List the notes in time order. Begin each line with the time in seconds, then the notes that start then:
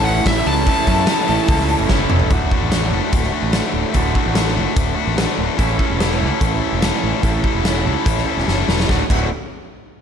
Already playing: A1 A2 E3 A3 C#4 E4 A4
0.05 F#5, open hi-hat
0.25 A1 A2 E3 A3 C#4 E4 A4 E5, kick, snare, open hi-hat
0.46 C#2 A3 C#4 E4 A4 A5, open hi-hat
0.66 A2 E3 A3 C#4 E4 A4, kick, open hi-hat
0.87 F#2 A3 C#4 E4 A4, kick, open hi-hat
1.07 A3 C#4 E4 A4, snare, open hi-hat
1.28 A1 A2 E3 A3 C#4 E4 A4, open hi-hat
1.48 C#2 A2 E3 A3 C#4 E4 A4, kick, open hi-hat
1.60 snare
1.68 open hi-hat
1.79 F#1
1.89 F#1 A2 E3 A3 C#4 E4 A4, kick, snare
1.99 high tom
2.10 E1 A3 C#4 E4 A4, mid tom
2.20 floor tom
2.30 D1 D2 A2 D3 A3 F#4, kick, closed hi-hat
2.51 D3 A3 F#4, kick
2.61 A1
2.71 A2 D3 A3 F#4, snare, closed hi-hat
2.82 snare
2.90 F#1 A3 F#4
2.95 D3
3.12 D1, kick, closed hi-hat
3.23 snare
3.32 D3 A3 F#4
3.42 A1
3.52 D2 A2 D3 A3 F#4, snare, closed hi-hat
3.74 D1
3.94 D1 D2 A2 D3 A3 F#4, kick, closed hi-hat
4.14 D3 A3 F#4, kick
4.26 A1
4.34 A2 D3 A3 F#4, snare, closed hi-hat
4.46 snare
4.55 F#1 D3 A3 F#4
4.76 D1, kick, closed hi-hat
4.96 D3 A3 F#4
5.07 A1
5.16 D2 A2 D3 A3 F#4, snare, closed hi-hat
5.38 D1
5.57 A1 A2 E3 A3 C#4 E4 A4, kick, closed hi-hat
5.79 A3 C#4 E4 A4, kick
5.90 E1
5.98 A3 C#4 E4 A4, snare, closed hi-hat
6.11 snare
6.19 C#2 A3 C#4 E4 A4
6.41 A1, kick, closed hi-hat
6.60 A3 C#4 E4 A4
6.72 E1
6.81 A2 E3 A3 C#4 E4 A4, snare, closed hi-hat
7.03 A1
7.22 A1 A2 E3 A3 C#4 E4 A4, kick, closed hi-hat
7.43 A3 C#4 E4 A4, kick
7.55 E1
7.65 A3 C#4 E4 A4, snare, closed hi-hat
7.85 C#2 A3 C#4 E4 A4
8.06 A1, kick, closed hi-hat
8.17 snare
8.26 A3 C#4 E4 A4
8.37 E1, snare
8.46 F#1 A2 E3 A3 C#4 E4 A4, snare
8.68 E1, snare
8.80 snare
8.89 D1 D2 A2 D3 A3 F#4, kick, snare
9.10 D1 D2 A2 D3 A3 F#4, kick, crash